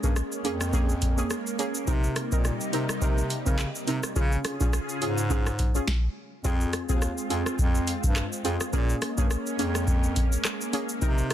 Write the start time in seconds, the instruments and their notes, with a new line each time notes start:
Already playing: analog synth pad G#3 A#3 C#4
0.03 bass clarinet G2, synth stab A#3 C#4 G#4, kick, shaker
0.16 cross-stick, shaker
0.32 shaker
0.44 bass clarinet F2, synth stab A#3 C#4 G#4, closed hi-hat, shaker
0.61 cross-stick, shaker
0.73 synth stab A#3 C#4 G#4, kick, shaker
0.89 shaker
1.02 kick, closed hi-hat, shaker
1.17 synth stab A#3 C#4 G#4, shaker
1.30 cross-stick, shaker
1.47 shaker
1.59 synth stab A#3 C#4 G#4, closed hi-hat, shaker
1.75 shaker
1.87 analog synth pad C3 G3 D#4, bass clarinet C3, synth stab C4 D#4 A#4, kick, shaker
2.04 shaker
2.16 cross-stick, closed hi-hat, shaker
2.32 bass clarinet A#2, synth stab C4 D#4 A#4, kick, shaker
2.45 cross-stick, shaker
2.61 shaker
2.73 bass clarinet C3, synth stab C4 D#4 A#4, closed hi-hat, shaker
2.89 cross-stick, shaker
3.02 bass clarinet C3, synth stab C4 D#4 A#4, kick, shaker
3.18 shaker
3.30 closed hi-hat, shaker
3.46 bass clarinet C#3, synth stab C4 D#4 A#4, kick, shaker
3.59 cross-stick, clap, shaker
3.75 shaker
3.87 bass clarinet C3, synth stab C4 D#4 A#4, closed hi-hat, shaker
4.03 cross-stick, shaker
4.16 bass clarinet C#3, analog synth pad C#3 C#4 F4 G#4, synth stab C#4 F4 G#4, kick, shaker
4.32 shaker
4.45 cross-stick, closed hi-hat, shaker
4.60 bass clarinet A#2, synth stab C#4 F4 G#4, kick, shaker
4.73 cross-stick, shaker
4.89 shaker
5.01 bass clarinet G#2, synth stab C#4 F4 G#4, closed hi-hat, shaker
5.18 shaker
5.30 synth stab C#4 F4 G#4, kick, shaker
5.46 cross-stick, shaker
5.59 kick, closed hi-hat, shaker
5.75 synth stab C#4 F4 G#4, shaker
5.88 kick, snare
6.44 bass clarinet F2, analog synth pad G#3 C4 F4, synth stab C4 F4 G#4, kick, shaker
6.61 shaker
6.73 cross-stick, closed hi-hat, shaker
6.89 bass clarinet D#2, synth stab C4 F4 G#4, kick, shaker
7.02 cross-stick, shaker
7.18 shaker
7.30 bass clarinet F2, synth stab C4 F4 G#4, closed hi-hat, shaker
7.46 cross-stick, shaker
7.59 bass clarinet F2, kick, shaker
7.75 shaker
7.87 closed hi-hat, shaker
8.04 bass clarinet G2, kick, shaker
8.16 cross-stick, clap, shaker
8.33 shaker
8.44 bass clarinet F2, synth stab C4 F4 G#4, closed hi-hat, shaker
8.60 cross-stick, shaker
8.73 bass clarinet A#2, synth stab A#3 C#4 G#4, analog synth pad A#3 C#4, kick, shaker
8.89 shaker
9.02 cross-stick, closed hi-hat, shaker
9.17 bass clarinet G2, synth stab A#3 C#4 G#4, kick, shaker
9.31 cross-stick, shaker
9.46 shaker
9.59 bass clarinet F2, synth stab A#3 C#4 G#4, closed hi-hat, shaker
9.75 cross-stick, shaker
9.87 kick, shaker
10.04 shaker
10.16 kick, closed hi-hat, shaker
10.32 shaker
10.45 cross-stick, clap, shaker
10.61 shaker
10.73 synth stab A#3 C#4 G#4, closed hi-hat, shaker
10.89 shaker
11.02 analog synth pad C3 G3 D#4, bass clarinet C3, synth stab C4 D#4 A#4, kick, shaker
11.18 shaker
11.30 cross-stick, closed hi-hat, shaker